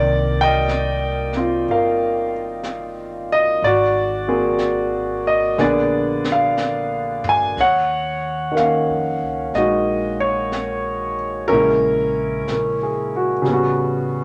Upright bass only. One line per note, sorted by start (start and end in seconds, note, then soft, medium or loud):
0.00 1.64 C2 medium
1.68 3.58 G1 medium
3.62 5.54 G#1 medium
5.58 7.53 A#1 medium
7.58 8.85 D#2 medium
8.89 9.19 F2 medium
9.22 9.52 C#2 medium
9.53 11.45 A#1 medium
11.49 12.43 A#1 medium
12.48 13.41 A#1 medium
13.44 14.24 A1 medium